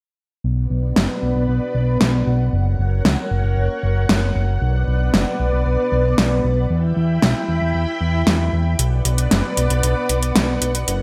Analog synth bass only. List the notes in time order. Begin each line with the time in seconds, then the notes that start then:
0.44 B1
0.70 B1
0.96 F#1
1.22 B1
1.36 B1
1.48 B1
1.75 B1
2.01 B1
2.27 B1
2.53 F#1
2.79 F#1
3.05 C#2
3.31 F#1
3.44 F#1
3.57 F#1
3.83 F#1
4.09 F#1
4.35 F#1
4.62 B1
4.88 B1
5.14 F#1
5.40 B1
5.53 B1
5.66 B1
5.92 B1
6.18 B1
6.44 B1
6.70 E2
6.96 E2
7.22 B1
7.49 E2
7.62 E2
7.75 E2
8.01 E2
8.27 E2
8.53 E2
8.79 B1
9.05 B1
9.31 F#1
9.57 B1
9.70 B1
9.83 B1
10.09 B1
10.36 B1
10.62 B1
10.88 F#1